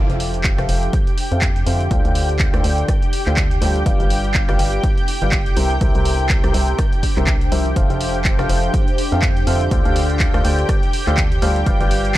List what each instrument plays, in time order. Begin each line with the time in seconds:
Already playing: ambient pad D4 G4 C5 G5, analog synth pad G4 G5
0.10 fm bass F1, grand piano F3 F4 A4 C5 E5 F5, closed hi-hat
0.20 open hi-hat
0.34 closed hi-hat
0.44 kick, clap, closed hi-hat
0.58 fm bass F1, grand piano F3 F4 A4 C5 E5 F5, cross-stick, closed hi-hat
0.69 fm bass F1, grand piano F3 F4 A4 C5 E5 F5, open hi-hat
0.83 closed hi-hat
0.93 kick, closed hi-hat
1.07 closed hi-hat
1.18 open hi-hat
1.32 fm bass F2, grand piano F3 F4 A4 C5 E5 F5, closed hi-hat
1.42 kick, clap, closed hi-hat
1.56 closed hi-hat
1.66 fm bass F2, grand piano D3 F4 A4 C5 E5 F5, open hi-hat
1.80 closed hi-hat
1.91 fm bass D2, grand piano D3 F4 A4 C5 D5 F5, kick, closed hi-hat
2.05 fm bass D2, grand piano D3 F4 A4 C5 D5 F5, closed hi-hat
2.15 open hi-hat
2.29 closed hi-hat
2.39 kick, clap, closed hi-hat
2.54 fm bass D2, grand piano D3 F4 A4 C5 D5 F5, cross-stick, closed hi-hat
2.64 fm bass D2, grand piano D3 F4 A4 C5 D5 G5, open hi-hat
2.78 closed hi-hat
2.88 kick, cross-stick, closed hi-hat
3.02 closed hi-hat
3.13 open hi-hat
3.26 fm bass D2, grand piano D3 F4 A4 C5 D5 F5, clap, closed hi-hat
3.37 kick, clap, closed hi-hat
3.51 closed hi-hat
3.62 fm bass D2, grand piano G3 F4 A4 C5 D5 F5, open hi-hat
3.76 closed hi-hat
3.86 fm bass G1, grand piano G3 F4 G4 B4 D5 F5, ambient pad B3, kick, closed hi-hat
4.00 fm bass G1, grand piano G3 F4 G4 B4 D5 F5, closed hi-hat
4.10 open hi-hat
4.24 ambient pad E4, closed hi-hat
4.34 kick, clap, closed hi-hat
4.49 fm bass G1, grand piano G3 F4 G4 B4 D5 F5, cross-stick, closed hi-hat
4.59 fm bass G1, grand piano G3 F4 G4 B4 D5 G5, ambient pad D5, open hi-hat
4.63 ambient pad A4
4.73 closed hi-hat
4.84 kick, closed hi-hat
4.97 closed hi-hat
5.08 open hi-hat
5.22 fm bass G1, grand piano G3 F4 G4 B4 D5 F5, closed hi-hat
5.32 kick, clap, closed hi-hat
5.46 closed hi-hat
5.57 fm bass C2, grand piano C3 E4 G4 A#4 C5 E5, ambient pad D4, open hi-hat
5.71 closed hi-hat
5.81 fm bass C2, grand piano C3 E4 G4 A#4 C5 E5, ambient pad C5, kick, closed hi-hat
5.95 fm bass C2, grand piano C3 E4 G4 A#4 C5 E5, closed hi-hat
6.01 ambient pad G4
6.05 open hi-hat
6.19 closed hi-hat
6.29 kick, clap, closed hi-hat
6.44 fm bass C2, grand piano C3 E4 G4 A#4 C5 E5, cross-stick, closed hi-hat
6.54 fm bass C2, grand piano C3 E4 G4 A#4 C5 G5, ambient pad G5, open hi-hat
6.68 closed hi-hat
6.79 kick, cross-stick, closed hi-hat
6.93 closed hi-hat
7.03 kick, open hi-hat
7.16 fm bass C2, grand piano C3 E4 G4 A#4 C5 E5, clap, closed hi-hat
7.27 kick, clap, closed hi-hat
7.41 closed hi-hat
7.52 fm bass C2, grand piano F3 E4 G4 A#4 C5 E5, open hi-hat
7.66 closed hi-hat
7.76 fm bass F1, grand piano F3 F4 A4 C5 E5 F5, analog synth pad G4 G5, kick, closed hi-hat
7.90 fm bass F1, grand piano F3 F4 A4 C5 E5 F5, closed hi-hat
8.01 open hi-hat
8.15 closed hi-hat
8.25 kick, clap, closed hi-hat
8.39 fm bass F1, grand piano F3 F4 A4 C5 E5 F5, cross-stick, closed hi-hat
8.49 fm bass F1, grand piano F3 F4 A4 C5 E5 F5, open hi-hat
8.63 closed hi-hat
8.74 kick, closed hi-hat
8.88 closed hi-hat
8.98 open hi-hat
9.12 fm bass F2, grand piano F3 F4 A4 C5 E5 F5, closed hi-hat
9.22 kick, clap, closed hi-hat
9.37 closed hi-hat
9.47 fm bass F2, grand piano D3 F4 A4 C5 E5 F5, open hi-hat
9.61 closed hi-hat
9.71 fm bass D2, grand piano D3 F4 A4 C5 D5 F5, kick, closed hi-hat
9.85 fm bass D2, grand piano D3 F4 A4 C5 D5 F5, closed hi-hat
9.96 open hi-hat
10.10 closed hi-hat
10.20 kick, clap, closed hi-hat
10.34 fm bass D2, grand piano D3 F4 A4 C5 D5 F5, cross-stick, closed hi-hat
10.45 fm bass D2, grand piano D3 F4 A4 C5 D5 G5, open hi-hat
10.59 closed hi-hat
10.69 kick, cross-stick, closed hi-hat
10.83 closed hi-hat
10.93 open hi-hat
11.07 fm bass D2, grand piano D3 F4 A4 C5 D5 F5, clap, closed hi-hat
11.17 kick, clap, closed hi-hat
11.32 closed hi-hat
11.42 fm bass D2, grand piano G3 F4 A4 C5 D5 F5, open hi-hat
11.56 closed hi-hat
11.66 fm bass G1, grand piano G3 F4 G4 B4 D5 F5, ambient pad B3, kick, closed hi-hat
11.80 fm bass G1, grand piano G3 F4 G4 B4 D5 F5, closed hi-hat
11.91 open hi-hat
12.05 closed hi-hat